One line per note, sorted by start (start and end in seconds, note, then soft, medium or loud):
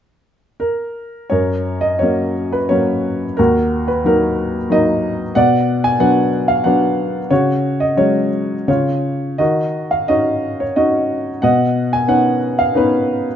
0.60 1.26 A#4 soft
1.30 3.34 F#2 soft
1.30 2.33 A#4 soft
1.30 1.85 C#5 medium
1.81 1.99 D#5 medium
1.99 2.57 F#3 soft
1.99 2.57 A#3 soft
1.99 2.58 C#4 soft
1.99 2.54 C#5 medium
2.52 2.71 B4 medium
2.69 3.24 F#3 soft
2.69 3.25 A#3 soft
2.69 3.25 C#4 soft
2.69 3.34 C#5 medium
3.37 5.32 D#2 soft
3.37 4.34 F#4 soft
3.37 3.89 A#4 medium
3.88 4.05 B4 medium
4.04 4.57 F#3 soft
4.04 4.58 A#3 soft
4.04 4.58 D#4 soft
4.04 4.67 A#4 medium
4.70 5.22 F#3 soft
4.70 5.23 A#3 soft
4.70 5.23 D#4 soft
4.70 5.38 D#5 medium
5.35 7.27 B2 medium
5.35 6.29 D5 medium
5.35 5.85 F#5 medium
5.84 5.99 G#5 medium
6.00 6.52 F#3 soft
6.00 6.52 B3 soft
6.00 6.52 D4 soft
6.00 6.45 F#5 medium
6.48 6.64 F5 medium
6.64 7.18 F#3 soft
6.64 7.18 B3 soft
6.64 7.18 D4 soft
6.64 7.32 F#5 medium
7.30 8.64 C#3 soft
7.30 8.29 F#4 soft
7.30 7.82 C#5 medium
7.80 7.98 D#5 medium
7.97 8.54 F#3 soft
7.97 8.54 G#3 soft
7.97 8.54 C#4 soft
7.97 8.67 C#5 medium
8.68 9.37 C#3 soft
8.68 9.37 F4 soft
8.68 9.42 C#5 medium
9.38 11.38 D#3 soft
9.38 10.08 F#4 soft
9.38 9.92 D#5 medium
9.91 10.09 F5 medium
10.08 10.63 C#4 soft
10.08 10.63 D#4 soft
10.08 10.63 F#4 soft
10.08 10.61 D#5 medium
10.60 10.77 C#5 soft
10.76 11.29 C#4 soft
10.76 11.29 D#4 soft
10.76 11.30 F#4 soft
10.76 11.42 D#5 medium
11.42 13.36 B2 soft
11.42 12.38 D#5 medium
11.42 11.93 F#5 medium
11.93 12.08 G#5 medium
12.08 12.61 B3 soft
12.08 12.61 C#4 soft
12.08 12.62 D#4 soft
12.08 12.55 F#5 medium
12.59 12.76 F5 medium
12.75 13.27 B3 soft
12.75 13.27 C#4 soft
12.75 13.27 D#4 soft
12.75 13.36 B4 medium